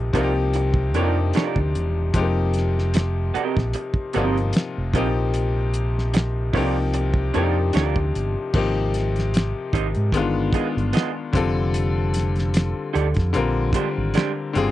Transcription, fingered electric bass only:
Already playing: A#1
0.14 C2
0.95 F2
1.57 D2
1.76 E1
2.15 F1
3.36 muted fingered electric bass stroke
3.58 A#1
4.16 G1
4.78 F1
4.94 A#1
6.54 C2
7.36 F2
7.75 D2
8.16 G1
8.55 G#1
9.74 G#1
9.97 G#2
10.13 G1
10.77 G1
11.34 F1
12.95 D2
13.18 F2
13.36 A#1
13.98 G#1
14.56 G1

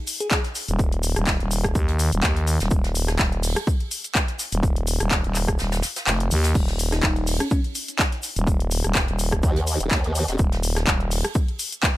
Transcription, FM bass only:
0.68 D#1
1.16 D#1
1.40 D#1
1.75 D#2
2.12 D#1
2.23 D#2
2.60 D#1
2.71 D#1
3.19 D#1
4.52 D#1
5.00 D#1
5.24 D#1
5.59 D#1
6.07 F1
6.31 D#2
6.55 D#1
7.03 D#1
8.36 D#1
8.84 D#1
9.08 D#1
10.39 D#1
10.87 D#1

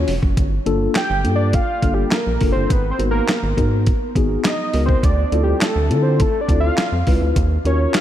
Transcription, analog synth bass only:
0.08 F1
0.23 F#1
0.37 G1
0.66 G1
1.10 G1
1.25 G2
1.82 G1
2.27 A#1
2.41 F#1
2.56 G1
2.70 G#1
2.99 G#1
3.43 G#1
3.58 G#2
4.16 G#1
4.74 C#2
5.03 D2
5.32 D2
5.76 D2
5.90 D3
6.49 D2
6.92 F2
7.07 C#2
7.21 D2
7.36 D#2
7.65 D#2

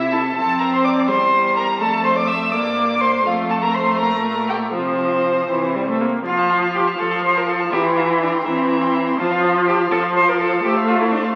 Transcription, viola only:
0.12 E4
0.36 C4
1.08 G3
1.81 A3
2.53 A#3
3.25 A3
4.74 F3
5.50 E3
5.75 G3
5.89 A3
6.01 A#3
6.25 F3
6.99 F3
7.72 E3
8.45 E3
9.18 F3
9.91 F3
10.64 A3

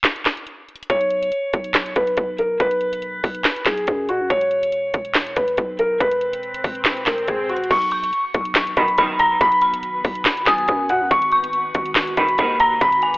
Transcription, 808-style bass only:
0.90 B1
1.54 B1
1.96 B1
2.18 B1
2.60 B1
3.24 B1
3.66 B1
3.88 F#2
4.09 B2
4.20 F#2
4.30 E1
4.94 E1
5.37 E1
5.58 B1
6.00 E1
6.64 E1
7.07 E1
7.28 E1
7.71 B1
8.35 B1
8.77 B1
8.98 B1
9.41 B1
10.05 B1
10.47 B1
10.69 F#2
10.90 B2
11.01 F#2
11.11 G#1
11.75 G#1
12.17 G#1
12.39 D#2
12.81 G#1

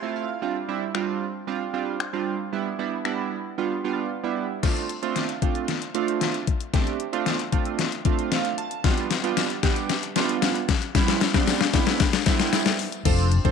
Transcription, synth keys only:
Already playing: C6
0.02 A3 C4 E4 F4
0.16 F5
0.42 G3 C4 D4 F4
0.68 G3 C4 D4 E4
0.94 G3 C4 D4 F4
1.47 G3 C4 D4 F4
1.73 G3 C4 D4 F4
2.13 G3 C4 D4 F4
2.52 G3 B3 D4 E4
2.79 G3 B3 D4 E4
3.05 G3 B3 D4 E4
3.58 G3 B3 D4 F4
3.84 G3 B3 D4 F4
4.23 G3 B3 D4 E4
4.63 A3 C4 D4 F4
5.02 A3 C4 D4 F4
5.42 A3 C4 D4 F4
5.94 A3 C4 D4 F4
6.73 A3 C4 D4 G4
7.13 A3 C4 D4 F4
7.52 A3 C4 D4 F4
8.05 A3 C4 D4 F4
8.32 F5
8.58 A5
8.84 G3 B3 D4 F4
9.23 G3 B3 D4 F4
9.63 G3 B3 D4 G4
10.16 G3 B3 D4 F4
10.95 G3 B3 C4 E4
11.34 G3 B3 C4 D4
11.74 G3 B3 C4 E4
12.26 G3 B3 C4 E4
13.05 C4 D4 F4 A4 C5
13.45 C4 D4 F4 A4 C5

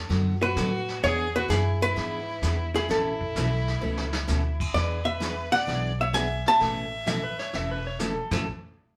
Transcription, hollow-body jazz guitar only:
0.42 B4
1.04 C#5
1.36 B4
1.50 G#4
1.82 B4
2.76 G#4
2.91 A4
4.74 D5
5.05 E5
5.52 F#5
6.01 E5
6.14 G#5
6.48 A5

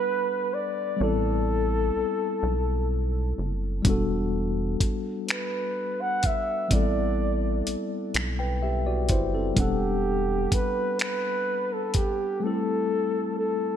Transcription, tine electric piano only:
Already playing: G3 B3 D4 A4 F#5
0.96 G3 B3 C4
1.02 E4 A4
3.82 G3 B3 D4
3.88 F#4 A4
6.68 G3 B3 C4
6.74 E4 A4
8.39 B4 G5
8.63 G4 E5
8.86 F#4 D5
9.10 E4 C5
9.35 C4 A4
9.54 G3 B3 D4
9.60 A4 F#5
12.40 G3 A3 C4
12.46 E4 A4

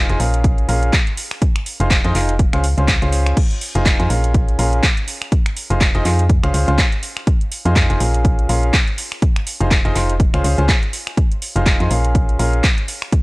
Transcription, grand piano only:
0.09 D#4 F4 G#4 C5 G#5
0.20 C#4 F4 G#4 A#4 F5
0.69 C#4 F4 G#4 A#4 F5
1.80 D#4 F4 G#4 C5 F5
2.05 D#4 F4 G#4 C5 D#5
2.15 D#4 F4 G#4 C5 F5
2.53 C#4 F4 G#4 C5 F5
2.78 C#4 F4 G#4 C5 F5
3.02 C#4 F4 G#4 C5 F5
3.75 D#4 F4 G#4 C5 F5
4.00 D#4 F4 G#4 C5 G#5
4.10 C#4 F4 G#4 A#4 F5
4.59 C#4 F4 G#4 A#4 F5
5.70 D#4 F4 G#4 C5 F5
5.95 D#4 F4 G#4 C5 D#5
6.05 D#4 F4 G#4 C5 F5
6.43 C#4 F4 G#4 C5 F5
6.54 C#4 F4 G#4 C5 F5
6.68 C#4 F4 G#4 C5 F5
7.65 D#4 F4 G#4 C5 F5
7.90 D#4 F4 G#4 C5 G#5
8.00 C#4 F4 G#4 A#4 F5
8.49 C#4 F4 G#4 A#4 F5
9.60 D#4 F4 G#4 C5 F5
9.85 D#4 F4 G#4 C5 D#5
9.95 D#4 F4 G#4 C5 F5
10.34 C#4 F4 G#4 C5 F5
10.44 C#4 F4 G#4 C5 F5
10.58 C#4 F4 G#4 C5 F5
11.56 D#4 F4 G#4 C5 F5
11.80 D#4 F4 G#4 C5 G#5
11.91 C#4 F4 G#4 A#4 F5
12.39 C#4 F4 G#4 A#4 F5

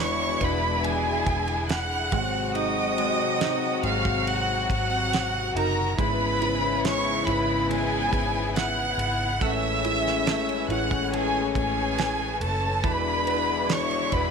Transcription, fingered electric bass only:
Already playing: E1
0.41 E1
1.26 E1
2.12 G#1
3.83 G#1
4.70 G#1
5.55 F#1
5.98 G#1
7.26 G#1
8.13 G#1
8.98 G#1
9.41 A1
10.69 A1
11.55 A1
12.40 F#1
12.84 E1
14.12 E1

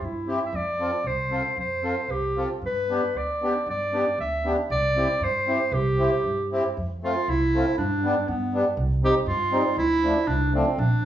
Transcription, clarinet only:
0.05 E4
0.46 E5
0.56 D5
1.07 C5
1.60 C5
2.11 G4
2.66 B4
3.18 D5
3.70 D5
4.20 E5
4.71 D5
5.23 C5
5.74 G4
7.05 F4
7.29 E4
7.78 D4
8.29 B3
9.05 G4
9.28 F4
9.78 E4
10.28 D4
10.56 C4
10.80 D4

